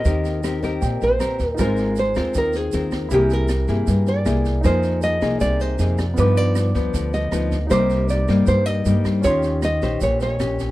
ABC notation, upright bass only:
X:1
M:4/4
L:1/8
Q:1/4=157
K:Eb
V:1 name="Upright bass" clef=bass
E,,4 B,,, B,,, z E,, | A,,,3 E,, E,,2 E,,2 | C,,3 G,, G,,2 C,,2 | F,,3 C,, C,,2 F,,2 |
G,,3 D,, D,,2 D,,2 | C,,3 G,, G,,2 G,,2 | E,,3 B,,, B,,,2 B,,,2 |]